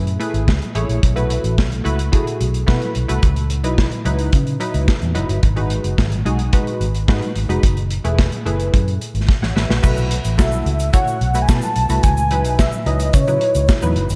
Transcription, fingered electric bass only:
Already playing: F#2
0.34 G#1
0.48 C#2
0.75 A1
0.89 A#1
1.03 B1
1.44 A1
1.58 B1
1.85 C#2
2.41 B1
2.68 B2
2.96 B1
3.10 C2
3.23 C#2
3.64 B1
4.06 C#2
4.33 C#3
4.74 C#2
5.02 E2
5.15 F#1
5.29 G1
5.43 G#1
5.84 F#1
5.98 G#1
6.26 B1
6.80 G#1
7.08 G#2
7.36 G#1
7.49 F1
7.63 F#1
8.05 E1
8.46 F#1
8.74 F#2
9.14 G#1
9.42 A1
9.56 A1
9.69 A#1
9.84 B1
10.25 A1
10.39 B1
10.66 C#2
11.21 B1
11.49 B2
11.76 B1
11.90 C2
12.04 C#2
12.45 B1
12.86 C#2
13.14 C#3
13.55 C#2
13.83 E2
13.96 F#1
14.10 G1

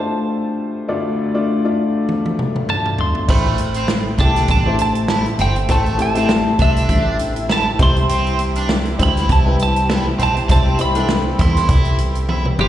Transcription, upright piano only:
Already playing: D2 D3 G4 D5
0.00 A3 D4 F4 C5
0.88 D2 D3 A3 D4 F4 D5
1.34 A3 D4 F4 D5
1.65 A3 D4 F4 D5
3.28 A2 A3 C4 E4 C5
4.19 A3 C4 E4 G4
4.66 A3 C4 E4 C5
5.69 A2 A3 C4 E4 C5
5.98 A3 C4 E4 G4
6.15 A3 C4 E4 C5
7.79 C3 G3 C4 E4 C5
8.99 G3 C4 E4 C5
9.46 G3 C4 E4 B4
10.19 C4
10.49 G3 C4 E4 C5
10.79 G3 C4 E4 C5
10.97 G3 C4 E4 A4

